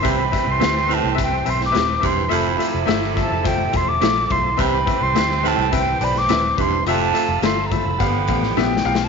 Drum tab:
HH |x-----x-----x-----x-----x-----x-----x-----x-----|x-----x-----x-----x-----x-----x-----x-----x-----|x-----x-----x-----x-----x-----x-----x-----x-----|x-----x-----x-----x-----x-----x-----------------|
SD |------------o--o-----------------o--o-----------|------------o--o--o-----------------o-----------|------------o--o--o--------------o--o-----------|------------o--------------------o--o---o---o---|
BD |o-----o-----------------o-----------------o-----|------------------o-----o-----o-----------o-----|o-----o-----------------o-----------------o-----|------------------o-----o-----o-----------------|